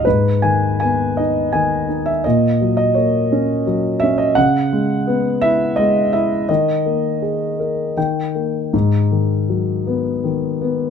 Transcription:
0.05 G#2 B4
0.42 D#3 G#5
0.80 B3 G#5
1.17 D#4 D#5
1.53 D#3 G#5
1.89 D#4
2.06 E5
2.24 A#2 D#5
2.61 F#3
2.77 D#5
2.94 A#3 C#5
3.32 C#4
3.67 F#3
4.00 C#4 E5
4.18 D#5
4.35 C#3 F#5
4.73 G#3
5.07 B3
5.42 E4 E5
5.76 G#3 D#5
6.13 E4 E5
6.49 D#3 D#5
6.86 A#3
7.22 G#4
7.60 A#4
7.97 D#3 G5
8.35 A#3
8.73 G#2
9.12 D#3
9.49 F#3
9.87 B3
10.24 D#3
10.62 B3

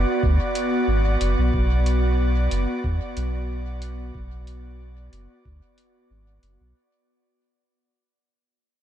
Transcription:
Already playing: B3 F#4 D5
0.23 D2, kick
0.55 closed hi-hat
0.88 G#1
1.21 F#1, closed hi-hat
1.38 B1
1.54 B1, kick
1.86 closed hi-hat
2.51 F#1, closed hi-hat
2.84 E2, kick
3.16 B1, closed hi-hat
3.82 closed hi-hat
4.15 B1, kick
4.47 closed hi-hat
5.12 F#1, closed hi-hat
5.45 D2, kick
5.78 closed hi-hat
6.10 G#1
6.43 F#1, closed hi-hat
6.60 B1

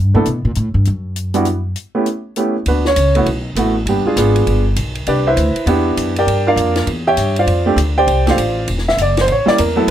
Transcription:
Already playing: G2
0.14 A#2 A3 B3 D4 E4 A4
0.25 B2, closed hi-hat
0.45 A#2
0.55 A2, closed hi-hat
0.74 G2
0.85 F#2, closed hi-hat
1.16 closed hi-hat
1.34 G3 B3 D4 E4 F#4, closed hi-hat
1.45 closed hi-hat
1.76 closed hi-hat
1.95 A3 B3 C#4 E4 G4
2.06 closed hi-hat
2.36 A3 B3 C#4 E4 G4, closed hi-hat
2.66 D2 B3 D4 F#4 B4, ride
2.85 C#4 C#5, snare
2.96 C#2, hi-hat pedal, ride
3.15 A3 B3 E4 F#4, ride
3.26 B1, ride
3.55 A1 A3 B3 E4 F#4, hi-hat pedal, ride
3.86 G1 G3 B3 D4 G4, ride
4.06 G#3 D4 F4 G#4, muted upright bass stroke
4.16 G#1 B3 D4 F4 G#4, hi-hat pedal, ride
4.36 ride
4.47 G1, ride
4.76 B1, hi-hat pedal, ride
4.95 ride
5.07 C2 D4 G4 B4 D5, ride
5.27 E4 B4 C5 E5
5.37 D2, hi-hat pedal, ride
5.56 muted upright bass stroke, ride
5.66 E2 B3 D4 E4 G4, ride
5.97 F#2, hi-hat pedal, ride
6.16 G4 A#4 D5 G5, ride
6.27 G2, ride
6.47 A#3 D4 F4 A#4 D5 F5
6.56 F2, hi-hat pedal, ride
6.76 snare, ride
6.87 E2, ride
7.07 G4 C#5 E5 G5
7.17 G2, hi-hat pedal, ride
7.36 F4 C5 D5 F5, ride
7.47 F2, ride
7.66 A3 C4 D4 G4
7.76 D2, hi-hat pedal, ride
7.98 G4 C5 D5 G5
8.07 C2, ride
8.26 A3 C4 D4 F4 G4 D5, snare, ride
8.31 C5 F5
8.37 A1, hi-hat pedal, ride
8.68 E1, ride
8.78 snare
8.88 E5, snare
8.97 F#1, hi-hat pedal, ride
9.02 D5
9.17 C5, snare, ride
9.27 A1 C5, ride
9.32 C#5
9.46 G3 A#3 C#4 E4 D5, muted upright bass stroke, snare
9.58 E2 A#4, hi-hat pedal, ride
9.76 F#3 A3 B3 E4 A4

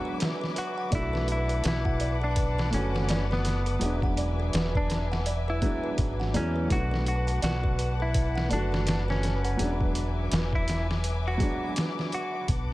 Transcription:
Already playing: F#3 G#3 B3 D4 F#4 B4 E5 G#5 D6
0.05 B4
0.20 B4, snare, closed hi-hat
0.41 B4, snare
0.56 F#4 B4, closed hi-hat
0.78 F#5
0.90 B1 A3 D4 D5 F#5 A5, kick, closed hi-hat
0.95 E4 F#4
1.13 B4, snare
1.28 E4 B4, closed hi-hat
1.49 B4, closed hi-hat
1.64 B1 B4, snare, closed hi-hat
1.68 E4
1.85 F#5, kick
2.00 D5, closed hi-hat
2.22 D4 B4
2.36 B4, kick, closed hi-hat
2.59 B4, snare
2.70 F#1 D3 A3 C#4 B4, closed hi-hat
2.75 F#4
2.95 F#5, snare
3.09 D5, snare, closed hi-hat
3.31 B3 B4, snare
3.45 B4, snare, closed hi-hat
3.66 B4, closed hi-hat
3.79 E1 F#3 G#3 B3 B4 E5 G#5, closed hi-hat
3.85 D4
4.02 F#5, kick
4.17 D5, closed hi-hat
4.40 B4
4.53 E1 B4, snare, closed hi-hat
4.75 D4 B4, kick
4.90 B4, snare, closed hi-hat
5.12 F#5, snare
5.26 D5, closed hi-hat
5.48 E4 B4
5.62 F#3 G#3 B3 D4 B4, kick, closed hi-hat
5.84 B4
5.98 G#1 B4, kick, closed hi-hat
6.20 F#5, snare
6.34 E2 F#3 G#3 B3 C#4 E4 D5, closed hi-hat
6.56 B4
6.68 B1 A3 D4 B4 F#5 A5, kick, closed hi-hat
6.72 F#4
6.91 B4, snare
7.06 F#4 B4, closed hi-hat
7.27 F#5, closed hi-hat
7.42 B1 F#4 D5, snare, closed hi-hat
7.64 B4, kick
7.79 B4, closed hi-hat
8.00 E4 B4
8.14 B4, kick, closed hi-hat
8.35 F#5, snare
8.49 F#1 A3 D5, closed hi-hat
8.53 D3 D4 F#4
8.72 B4, snare
8.86 B4, snare, closed hi-hat
9.08 C#4 B4, snare
9.23 B4, snare, closed hi-hat
9.45 F#5, closed hi-hat
9.57 E1 F#3 G#3 B3 E5 G#5 D6, closed hi-hat
9.63 D4
9.81 kick
9.95 closed hi-hat
10.32 E1, snare, closed hi-hat
10.53 E4, kick
10.68 snare, closed hi-hat
10.91 snare
11.04 closed hi-hat
11.28 F#4
11.38 F#3 G#3 B3, kick, closed hi-hat
11.43 D4
11.76 snare, closed hi-hat
11.99 snare
12.12 F#4, closed hi-hat
12.48 B1 F#5 A5, kick, closed hi-hat

